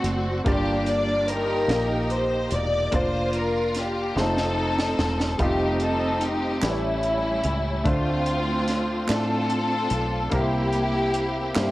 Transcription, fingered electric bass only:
0, 0, Header, 1, 2, 480
1, 0, Start_track
1, 0, Tempo, 821918
1, 268, Time_signature, 6, 3, 24, 8
1, 6840, End_track
2, 0, Start_track
2, 0, Title_t, "Fingered electric bass"
2, 0, Program_c, 0, 33
2, 22, Note_on_c, 0, 30, 78
2, 246, Note_off_c, 0, 30, 0
2, 267, Note_on_c, 0, 31, 93
2, 965, Note_off_c, 0, 31, 0
2, 982, Note_on_c, 0, 34, 91
2, 1442, Note_off_c, 0, 34, 0
2, 1469, Note_on_c, 0, 28, 86
2, 1690, Note_off_c, 0, 28, 0
2, 1709, Note_on_c, 0, 29, 97
2, 2406, Note_off_c, 0, 29, 0
2, 2430, Note_on_c, 0, 29, 92
2, 2887, Note_off_c, 0, 29, 0
2, 2912, Note_on_c, 0, 28, 78
2, 3132, Note_off_c, 0, 28, 0
2, 3149, Note_on_c, 0, 29, 92
2, 3846, Note_off_c, 0, 29, 0
2, 3869, Note_on_c, 0, 33, 96
2, 4326, Note_off_c, 0, 33, 0
2, 4349, Note_on_c, 0, 37, 85
2, 4570, Note_off_c, 0, 37, 0
2, 4587, Note_on_c, 0, 38, 89
2, 5284, Note_off_c, 0, 38, 0
2, 5310, Note_on_c, 0, 45, 80
2, 5766, Note_off_c, 0, 45, 0
2, 5786, Note_on_c, 0, 35, 86
2, 6008, Note_off_c, 0, 35, 0
2, 6027, Note_on_c, 0, 36, 104
2, 6725, Note_off_c, 0, 36, 0
2, 6752, Note_on_c, 0, 43, 89
2, 6840, Note_off_c, 0, 43, 0
2, 6840, End_track
0, 0, End_of_file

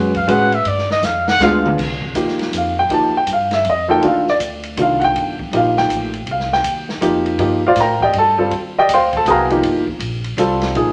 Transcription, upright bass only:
0, 0, Header, 1, 3, 480
1, 0, Start_track
1, 0, Tempo, 373832
1, 844, Time_signature, 3, 2, 24, 8
1, 14029, End_track
2, 0, Start_track
2, 0, Title_t, "Upright bass"
2, 0, Program_c, 0, 32
2, 0, Note_on_c, 0, 42, 93
2, 343, Note_off_c, 0, 42, 0
2, 354, Note_on_c, 0, 45, 97
2, 824, Note_off_c, 0, 45, 0
2, 832, Note_on_c, 0, 43, 87
2, 1300, Note_off_c, 0, 43, 0
2, 1307, Note_on_c, 0, 41, 97
2, 1775, Note_off_c, 0, 41, 0
2, 1782, Note_on_c, 0, 38, 102
2, 2259, Note_off_c, 0, 38, 0
2, 2282, Note_on_c, 0, 36, 82
2, 2744, Note_off_c, 0, 36, 0
2, 2751, Note_on_c, 0, 39, 88
2, 3219, Note_off_c, 0, 39, 0
2, 3227, Note_on_c, 0, 41, 89
2, 3699, Note_off_c, 0, 41, 0
2, 3706, Note_on_c, 0, 39, 88
2, 4001, Note_off_c, 0, 39, 0
2, 4188, Note_on_c, 0, 43, 95
2, 4664, Note_off_c, 0, 43, 0
2, 4671, Note_on_c, 0, 41, 93
2, 5146, Note_off_c, 0, 41, 0
2, 5153, Note_on_c, 0, 39, 82
2, 5627, Note_off_c, 0, 39, 0
2, 5644, Note_on_c, 0, 38, 87
2, 6113, Note_off_c, 0, 38, 0
2, 6123, Note_on_c, 0, 36, 98
2, 6589, Note_off_c, 0, 36, 0
2, 6596, Note_on_c, 0, 31, 85
2, 7069, Note_off_c, 0, 31, 0
2, 7079, Note_on_c, 0, 34, 95
2, 7550, Note_off_c, 0, 34, 0
2, 7564, Note_on_c, 0, 33, 92
2, 8033, Note_off_c, 0, 33, 0
2, 8039, Note_on_c, 0, 36, 87
2, 8507, Note_off_c, 0, 36, 0
2, 8515, Note_on_c, 0, 39, 96
2, 8988, Note_off_c, 0, 39, 0
2, 8996, Note_on_c, 0, 41, 96
2, 9468, Note_off_c, 0, 41, 0
2, 9475, Note_on_c, 0, 43, 86
2, 9948, Note_off_c, 0, 43, 0
2, 9960, Note_on_c, 0, 45, 92
2, 10430, Note_off_c, 0, 45, 0
2, 10440, Note_on_c, 0, 43, 102
2, 10910, Note_off_c, 0, 43, 0
2, 10917, Note_on_c, 0, 39, 89
2, 11388, Note_off_c, 0, 39, 0
2, 11410, Note_on_c, 0, 38, 97
2, 11875, Note_off_c, 0, 38, 0
2, 11882, Note_on_c, 0, 36, 103
2, 12350, Note_off_c, 0, 36, 0
2, 12370, Note_on_c, 0, 31, 87
2, 12824, Note_off_c, 0, 31, 0
2, 12832, Note_on_c, 0, 34, 102
2, 13305, Note_off_c, 0, 34, 0
2, 13314, Note_on_c, 0, 36, 102
2, 13786, Note_off_c, 0, 36, 0
2, 13793, Note_on_c, 0, 34, 82
2, 13956, Note_off_c, 0, 34, 0
2, 13956, Note_on_c, 0, 32, 56
2, 14029, Note_off_c, 0, 32, 0
2, 14029, End_track
3, 0, Start_track
3, 0, Title_t, "Muted upright bass strokes"
3, 4018, Note_on_c, 9, 29, 43
3, 4146, Note_off_c, 9, 29, 0
3, 14029, End_track
0, 0, End_of_file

